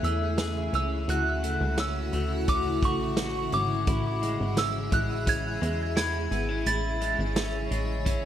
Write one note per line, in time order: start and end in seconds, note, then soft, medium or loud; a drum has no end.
0.00 0.70 E2 medium
0.00 8.25 C#3 medium
0.00 1.09 E3 medium
0.00 1.43 A3 medium
0.00 0.73 C#4 medium
0.00 6.62 E4 medium
0.00 0.37 G#4 medium
0.00 1.05 G#4 medium
0.00 1.05 E5 medium
0.04 0.70 E6 medium
0.04 closed hi-hat medium
0.38 1.08 G#4 medium
0.38 snare loud
0.38 closed hi-hat medium
0.38 tambourine medium
0.73 1.06 C#2 medium
0.73 1.78 C#4 medium
0.73 1.10 E6 medium
0.73 closed hi-hat soft
1.08 1.58 D2 loud
1.08 3.85 F#4 medium
1.08 3.17 F#4 medium
1.08 3.85 F#5 medium
1.08 1.81 F#6 loud
1.08 closed hi-hat medium
1.43 2.13 A3 medium
1.43 closed hi-hat medium
1.61 2.10 C#2 loud
1.78 2.48 C#4 medium
1.78 2.51 E6 medium
1.78 snare loud
1.78 closed hi-hat medium
1.78 tambourine medium
2.13 2.84 D2 medium
2.13 2.83 A3 medium
2.13 closed hi-hat medium
2.48 3.52 C#4 medium
2.48 2.84 D6 medium
2.48 kick medium
2.48 closed hi-hat medium
2.83 3.49 A1 loud
2.83 4.22 A3 medium
2.83 3.56 C#6 medium
2.83 kick medium
2.83 closed hi-hat medium
3.17 3.87 F#4 medium
3.17 snare loud
3.17 closed hi-hat medium
3.17 tambourine medium
3.52 3.86 G#1 medium
3.52 4.56 C#4 medium
3.52 4.61 D6 medium
3.52 closed hi-hat soft
3.87 4.37 A1 loud
3.87 5.96 E4 medium
3.87 8.25 G#4 medium
3.87 6.64 E5 medium
3.87 kick loud
3.87 closed hi-hat medium
4.22 4.91 G#3 medium
4.22 closed hi-hat medium
4.40 4.90 G#1 medium
4.57 5.26 C#4 medium
4.57 4.94 E6 loud
4.57 snare loud
4.57 closed hi-hat medium
4.57 tambourine medium
4.91 5.58 A1 loud
4.91 5.61 G#3 medium
4.91 5.29 F#6 loud
4.91 kick medium
4.91 closed hi-hat medium
5.26 6.31 C#4 medium
5.26 5.94 G#6 loud
5.26 kick medium
5.26 closed hi-hat medium
5.61 6.28 E2 loud
5.61 7.00 G#3 medium
5.61 closed hi-hat medium
5.96 6.66 E4 medium
5.96 6.69 G#6 loud
5.96 snare loud
5.96 closed hi-hat medium
5.96 tambourine medium
6.31 6.65 G#1 loud
6.31 6.49 B3 medium
6.31 closed hi-hat soft
6.49 6.73 C#4 medium
6.66 7.16 A1 loud
6.66 8.25 E4 medium
6.66 8.25 C#5 medium
6.66 8.25 E5 medium
6.66 8.25 A6 loud
6.66 closed hi-hat medium
7.01 7.70 G#3 medium
7.01 closed hi-hat medium
7.19 7.69 G#1 medium
7.36 8.05 C#4 medium
7.36 snare loud
7.36 closed hi-hat medium
7.36 tambourine medium
7.71 8.25 A1 medium
7.71 8.25 G#3 medium
7.71 closed hi-hat soft
8.05 8.25 C#4 medium
8.05 kick medium
8.05 closed hi-hat medium